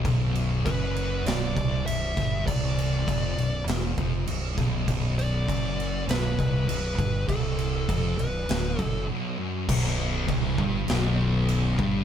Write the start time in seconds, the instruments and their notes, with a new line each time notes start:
0.04 fingered electric bass B0, distorted electric guitar B1, kick, crash
0.35 crash
0.66 fingered electric bass F#1, distorted electric guitar F#2, lead electric guitar B4, kick, crash
0.96 crash
1.26 fingered electric bass B0, distorted electric guitar B1, lead electric guitar D5, snare, crash
1.56 fingered electric bass C1, distorted electric guitar C2, kick, crash
1.86 fingered electric bass B0, distorted electric guitar B1, lead electric guitar E5, crash
2.17 fingered electric bass G1, distorted electric guitar G2, kick, snare, crash
2.47 fingered electric bass C1, distorted electric guitar C2, lead electric guitar D5, kick, crash
2.78 crash
3.08 fingered electric bass F1, distorted electric guitar F2, kick, crash
3.37 fingered electric bass B0, distorted electric guitar B1, crash
3.67 fingered electric bass E1, distorted electric guitar E2, snare, crash
3.98 fingered electric bass F1, distorted electric guitar F2, kick, crash
4.27 fingered electric bass B0, distorted electric guitar B1, crash
4.58 fingered electric bass B0, distorted electric guitar B1, kick, snare, crash
4.88 fingered electric bass B0, distorted electric guitar B1, kick, crash
5.18 lead electric guitar D5, crash
5.48 fingered electric bass F#1, distorted electric guitar F#2, kick, crash
5.80 crash
6.08 fingered electric bass B0, distorted electric guitar B1, lead electric guitar B4, snare, crash
6.39 fingered electric bass C1, distorted electric guitar C2, kick, crash
6.68 fingered electric bass B0, distorted electric guitar B1, lead electric guitar B4, crash
6.98 fingered electric bass G1, distorted electric guitar G2, kick, crash
7.28 fingered electric bass C1, distorted electric guitar C2, lead electric guitar A4, kick, crash
7.59 crash
7.88 fingered electric bass F1, distorted electric guitar F2, kick, crash
8.18 fingered electric bass B0, distorted electric guitar B1, lead electric guitar B4, crash
8.49 fingered electric bass D1, distorted electric guitar D2, snare, crash
8.78 fingered electric bass F#1, distorted electric guitar F#2, lead electric guitar A4, kick, crash
9.09 distorted electric guitar B1
9.39 distorted electric guitar F#2
9.69 fingered electric bass B0, distorted electric guitar B1, kick, crash
9.86 snare
10.28 fingered electric bass C1, distorted electric guitar C2, kick, crash
10.58 fingered electric bass G1, distorted electric guitar G2, kick
10.88 fingered electric bass B0, distorted electric guitar B1, snare, crash
11.49 crash
11.79 fingered electric bass G1, distorted electric guitar G2, kick